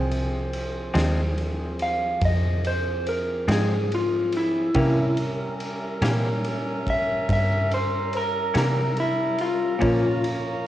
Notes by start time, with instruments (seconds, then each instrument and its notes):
Already playing: fingered electric bass C2, tonewheel organ F3 C4 G#4, grand piano C4 G#4 C5
0.11 ride
0.53 ride
0.94 fingered electric bass D#2, clean electric guitar F2 F3 G#3 C4, snare, ride
1.38 ride
1.79 clean electric guitar F5, ride
2.21 fingered electric bass F2, clean electric guitar D#5, kick, snare, ride
2.65 clean electric guitar C5, ride
3.06 clean electric guitar A#4, ride
3.48 clean electric guitar F2 F3 G#3 C4 G#4, fingered electric bass G#2, snare, ride
3.92 clean electric guitar F4, ride
4.32 ride
4.37 clean electric guitar E4
4.74 clean electric guitar C3 E3 A#3 C#4, fingered electric bass C3, tonewheel organ G3 C#4 A#4, grand piano C#4 G4 A#4 E5, horn section C#4 E5 A#5, kick, ride
5.17 ride
5.60 ride
6.02 fingered electric bass A#2, clean electric guitar C3 E3 A#3 C#4, snare, ride
6.44 ride
6.87 clean electric guitar E5, kick, ride
7.29 fingered electric bass G2, clean electric guitar E5, kick, snare, ride
7.71 clean electric guitar C5, ride
8.13 clean electric guitar A#4, ride
8.54 fingered electric bass C3, clean electric guitar C3 E3 A#3 C#4, snare, ride
8.58 clean electric guitar A#4
8.97 clean electric guitar E4, ride
9.38 clean electric guitar F4, ride
9.79 clean electric guitar A#2 F3 A#3 C#4, fingered electric bass A#2, tonewheel organ F3 C#4 A#4, grand piano C#4 F4 A#4 C#5, horn section C#5 F5, kick, ride
10.24 ride